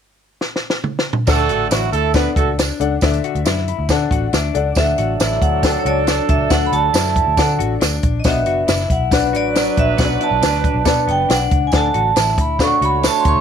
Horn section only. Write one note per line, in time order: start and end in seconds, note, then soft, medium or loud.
1.28 1.69 A3 loud
1.28 1.69 A4 loud
1.71 1.89 F#3 medium
1.71 1.88 F#4 medium
1.93 2.10 A3 medium
1.93 2.10 A4 loud
2.14 2.32 B3 medium
2.14 2.32 B4 medium
2.36 2.54 A3 medium
2.36 2.54 A4 medium
4.76 7.99 F#3 medium
4.76 7.99 D4 medium
4.76 7.99 A4 medium
9.12 11.47 F#3 medium
9.12 11.47 D4 medium
9.12 11.47 B4 loud
12.59 13.41 A3 medium
12.59 13.41 F#4 medium
12.59 13.41 C#5 medium